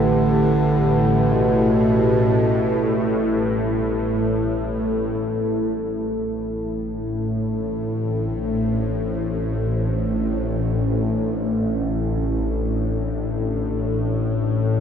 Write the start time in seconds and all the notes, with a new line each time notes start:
Already playing: A1 A2 D3 A3 E4 G4 A4 B4
1.33 B2
5.20 A1 A2 D4
6.04 C5
13.85 B4